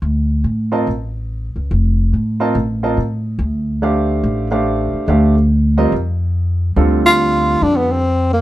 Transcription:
0.02 D2
0.44 A2
0.72 C4 F4 A#4 D#5 A5
0.87 A1
1.56 C#2
1.71 F1
2.13 A2
2.40 C4 F4 A#4 D#5 A5
2.55 A1
2.83 C4 F4 A#4 D#5 A5
2.97 A2
3.39 D2
3.82 A3 D4 G4 C5 F5
4.23 A1
4.51 A3 D4 G4 C5 F5
4.93 muted upright bass stroke
5.08 D2 A3 D4 G4 C5 F5
5.77 G3 C4 F4 A#4 D#5
5.92 F2
6.76 D2 D3 G3 C4 F4 A4
7.06 F4
7.61 F2 D4
7.76 B3
7.91 C4
8.33 A#3

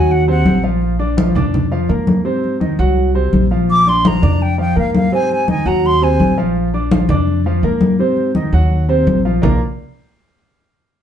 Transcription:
Already playing: D#2 F#3 F#4 F#5 G#5
0.10 F#5, high conga
0.28 C3 C4 C5 F#5, high conga
0.46 A#1, high conga
0.63 F3 F4 F5, high conga
0.82 high conga
0.99 D4 D5 D6, high conga
1.17 F3 F4 F5, high conga
1.35 F2 D4 D5 D6, high conga, low conga
1.54 high conga, low conga
1.71 F3 F4 F5, high conga
1.89 G#2 A#3 A#4 A#5, high conga
2.07 high conga
2.25 C3 C4 C5, high conga
2.44 high conga
2.60 D#3 D#4 D#5, high conga
2.79 C2 F#3 F#4 F#5, high conga
2.97 high conga
3.15 C3 C4 C5, high conga
3.33 A#1, high conga
3.51 F3 F4 F5, high conga
3.69 D6, high conga
3.86 D4 D5 C6 D6, high conga
4.05 F3 F4 F5 A#5, high conga
4.22 F2 D4 D5 D6, high conga, low conga
4.41 G5, high conga
4.58 F3 F4 F5 G5, high conga
4.76 G#2 A#3 A#4 F5 A#5, high conga
4.95 F5, high conga
5.12 C3 C4 C5 G#5, high conga
5.30 G#5, high conga
5.48 D#3 D#4 D#5 G#5, high conga
5.66 D#2 F#3 F#4 F#5 A#5, high conga
5.84 C6, high conga
6.02 C3 C4 C5 G#5, high conga
6.19 A#1, high conga
6.38 F3 F4 F5, high conga
6.56 high conga
6.74 D4 D5 D6, high conga
6.91 F3 F4 F5, high conga
7.09 F2 D4 D5 D6, high conga, low conga
7.27 high conga
7.44 F3 F4 F5, high conga
7.62 G#2 A#3 A#4 A#5, high conga
7.81 high conga
7.99 C3 C4 C5, high conga
8.17 high conga
8.35 D#3 D#4 D#5, high conga
8.52 D#2 F#3 F#4 F#5, high conga
8.70 high conga
8.89 C3 C4 C5, high conga
9.07 A#1, high conga
9.25 F3 F4 F5, high conga
9.42 A#1 A#3 F4 A#4 D5 F5 A#5, low conga

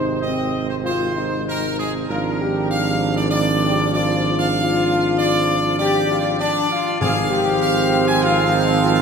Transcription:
Already playing: G#1 C3 C4 D#4 C5
0.22 C4 D#5
0.68 C5
0.83 F4 C5
1.16 D#4
1.48 A#4
1.79 G#4
2.08 G#1 F3 D4 F4 A#4
2.40 G4
2.70 F5
3.17 D5
3.30 F4 D5
3.64 G4
3.93 F4 D5
4.39 F5
4.56 F4
5.18 D5
5.78 G4 D5
6.11 F4
6.39 D4 D5
6.71 F4
7.00 G#1 G#2 F3 C4 G#4 F5
7.30 G4
7.61 F5
8.08 G#5
8.23 F4 F5
8.53 D#4
8.84 F4

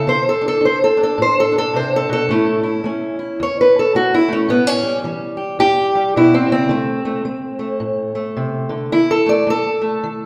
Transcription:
0.07 D3 C5
0.29 A4
0.41 D4
0.48 A4
0.61 D4
0.65 C5
0.84 A4
0.97 D4
1.03 A4
1.18 A2
1.22 C5
1.40 A4
1.52 D4
1.58 A4
1.73 C3 C5
1.96 A4
2.09 B2 A4
2.29 A2 A3 C#4 E4
2.63 E4
2.84 A3 C#4
3.19 E4
3.40 E2 C#5
3.61 B4
3.79 A4
3.95 A3 F#4
4.14 E4
4.28 A3
4.33 C#4
4.49 A2 B3
4.67 C#4
4.83 G3
5.04 E3 G3
5.37 G4
5.59 E2 G4
5.95 G3
6.16 B2 E4
6.34 C4
6.50 C#3 C4
6.69 D3 A3
7.05 A3
7.25 A3
7.59 A3
7.80 A2
8.15 A3
8.37 C3
8.69 D3
8.92 D#3 E4
9.11 A4
9.26 A3 D5
9.47 A3 A4
9.81 A3
10.03 D#3

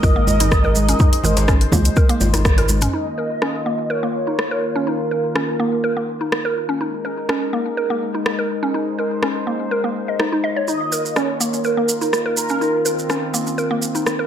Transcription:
Already playing: G#3 D#4 A#4 D#5
0.03 G#1 A#4, kick, djembe tone, djembe bass, maracas
0.16 A#3
0.27 high conga, djembe tone, maracas
0.40 D#4, closed hi-hat, low conga, maracas
0.51 kick, cross-stick, maracas
0.64 A#4, djembe tone
0.75 high conga, maracas
0.89 C#4, closed hi-hat, djembe tone, maracas
0.99 D#4 C5, kick, mid tom, maracas
1.13 closed hi-hat
1.24 G#1 A#4, high conga, low conga, maracas
1.37 closed hi-hat, djembe slap, maracas
1.48 C#4, kick, cross-stick, maracas
1.61 closed hi-hat
1.72 C#2 A#3, kick, high conga, djembe tone, low conga, djembe bass, maracas
1.85 closed hi-hat, maracas
1.96 A#4, kick, maracas
2.09 A#3, closed hi-hat
2.21 G#1, high conga, djembe tone, maracas
2.34 D#4, cross-stick, closed hi-hat, djembe tone, maracas
2.45 kick, cross-stick, maracas
2.58 A#4, closed hi-hat, djembe tone
2.68 djembe tone, high conga, maracas
2.81 C#4, closed hi-hat, mid tom, maracas
2.93 D#3 A#3 D#4 F4 D#5
3.18 A#4
3.42 C#4, cross-stick
3.66 A#3
3.90 A#4 C#5
4.03 A#3
4.27 D#4
4.39 cross-stick
4.51 A#4
4.75 C#4
4.87 D#4 A#4
5.11 A#4
5.35 C#4, cross-stick
5.59 A#3
5.84 A#4
5.97 A#3
6.21 D#4
6.32 cross-stick
6.45 A#4
6.69 C#4
6.81 G#3 D#4 A#4
7.05 A#4
7.29 C#4, cross-stick
7.53 A#3
7.77 A#4
7.90 A#3
8.14 D#4
8.26 cross-stick
8.39 A#4
8.63 C#4
8.74 D#4 C5
8.99 A#4
9.23 C#4, cross-stick
9.47 A#3
9.71 A#4
9.84 A#3
10.08 D#5
10.19 D#4, cross-stick
10.32 D#4
10.44 D#5
10.56 C#5
10.68 D#3 A#3 D#4 F4 D#5, maracas
10.92 A#4, maracas
11.05 maracas
11.16 C#4 C#5, cross-stick, maracas
11.40 A#3, maracas
11.53 maracas
11.64 A#4, maracas
11.77 A#3
11.89 maracas
12.01 D#4, maracas
12.13 cross-stick, maracas
12.26 A#4
12.37 A#4, maracas
12.49 C#4, maracas
12.61 C4 D#4, maracas
12.85 A#4, maracas
12.99 maracas
13.10 C#4, cross-stick, maracas
13.34 A#3, maracas
13.47 maracas
13.58 A#4, maracas
13.71 A#3
13.82 maracas
13.95 D#4, maracas
14.07 cross-stick, maracas
14.19 A#4

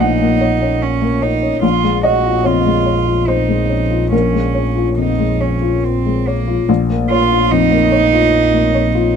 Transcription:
Already playing: A#1 A#3 C#4 C#5 G#5
0.00 A#2 D#4 F#5
0.21 A#3
0.41 C#5
0.61 C#4
0.82 C#4
1.02 A#3
1.22 D#4 C#5
1.42 C#4
1.62 A#1 F4
1.83 G#3
2.03 F#4 C#5 D#5
2.24 F4
2.44 F2 F4 C#5
2.66 G#3
2.86 C#5
3.06 F4
3.28 D#4 C5
3.48 G#3
3.68 C#4
3.90 F4
4.12 A#1 C#4 A#4
4.33 G#3
4.55 C#5
4.76 F4
4.97 F2 D#4
5.19 G#3
5.41 C#4 C#5
5.62 F4
5.84 C4
6.06 G#3
6.27 A#3 C#5
6.47 F4
6.69 A#1
6.90 A#3
7.10 F4 C#5
7.31 F4
7.51 F2 D#4
7.72 A#3
7.92 C#5
8.13 F4
8.54 A#3
8.75 C#5
8.95 F4

